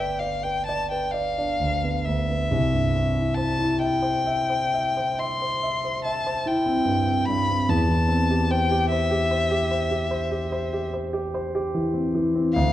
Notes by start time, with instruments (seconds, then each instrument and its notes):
Already playing: grand piano G1 B4 D5
0.00 violin G5
0.19 grand piano D5, violin F5
0.43 grand piano B4, violin G5
0.66 grand piano D5, violin A5
0.91 grand piano B4, violin G5
1.12 grand piano D5, violin F5
1.38 grand piano D4
1.59 grand piano D2
1.84 grand piano B3
2.05 grand piano D2, violin E5
2.30 grand piano B3
2.51 grand piano C2
2.73 grand piano G2
2.95 grand piano C4
3.16 grand piano E4
3.35 grand piano C5, violin A5
3.59 grand piano E4
3.79 grand piano E5, violin G5
4.02 grand piano C5
4.26 grand piano E5
4.50 grand piano C5
4.74 grand piano E5
4.97 grand piano C5
5.19 grand piano E5, violin C6
5.42 grand piano C5
5.63 grand piano E5
5.85 grand piano C5
6.04 grand piano E5, violin A5
6.26 grand piano C5
6.46 grand piano E4, violin G5
6.66 grand piano C4
6.85 grand piano G2
7.07 grand piano C4
7.26 grand piano G2, violin B5
7.49 grand piano C4
7.69 grand piano E2, violin A5
7.89 grand piano E3
8.08 grand piano C4
8.31 grand piano G4
8.51 grand piano C5, violin G5
8.71 grand piano G4
8.90 grand piano C5, violin E5
9.11 grand piano G4
9.31 grand piano C5
9.51 grand piano G4
9.71 grand piano C5
9.91 grand piano G4
10.11 grand piano C5
10.31 grand piano G4
10.52 grand piano C5
10.73 grand piano G4
10.93 grand piano C5
11.13 grand piano G4
11.34 grand piano C5
11.55 grand piano G4
11.75 grand piano E3
11.94 grand piano C4
12.15 grand piano E3
12.35 grand piano C4
12.53 grand piano D2, violin F5